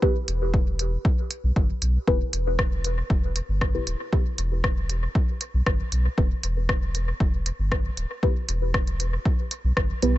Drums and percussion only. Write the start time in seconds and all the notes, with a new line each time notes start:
0.02 kick
0.28 closed hi-hat
0.54 kick
0.79 closed hi-hat
1.05 kick
1.31 closed hi-hat
1.56 kick
1.82 closed hi-hat
2.08 kick
2.33 closed hi-hat
2.59 kick, cross-stick
2.84 closed hi-hat
3.10 kick
3.36 closed hi-hat
3.61 kick, cross-stick
3.87 closed hi-hat
4.13 kick
4.38 closed hi-hat
4.64 kick, cross-stick
4.90 closed hi-hat
5.15 kick
5.41 closed hi-hat
5.66 kick, cross-stick
5.92 closed hi-hat
6.18 kick
6.43 closed hi-hat
6.69 kick, cross-stick
6.95 closed hi-hat
7.20 kick
7.46 closed hi-hat
7.72 kick, cross-stick
7.97 closed hi-hat
8.23 kick
8.49 closed hi-hat
8.74 kick, cross-stick
8.87 closed hi-hat
9.00 closed hi-hat
9.25 kick
9.51 closed hi-hat
9.77 kick, cross-stick
10.02 closed hi-hat